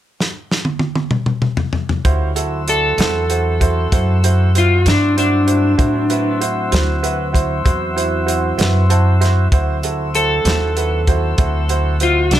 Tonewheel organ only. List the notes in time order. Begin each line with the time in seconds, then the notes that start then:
2.05 G3 C#4 F4
2.37 F#3 C4 E5
5.79 F#3 C4 E4
9.53 F#3 C4 E5